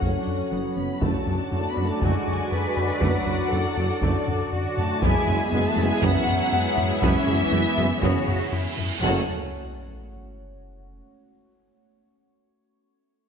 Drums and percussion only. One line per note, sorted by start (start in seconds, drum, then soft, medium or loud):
0.02 taiko medium
1.02 taiko medium
2.02 taiko medium
3.02 taiko medium
4.02 taiko medium
4.27 taiko low-mid soft
4.78 taiko low-mid soft
5.03 taiko loud
6.02 taiko medium
6.27 taiko low-mid medium
6.78 taiko low-mid medium
7.03 taiko loud
8.02 taiko medium
8.27 taiko low-mid soft
8.78 taiko low-mid medium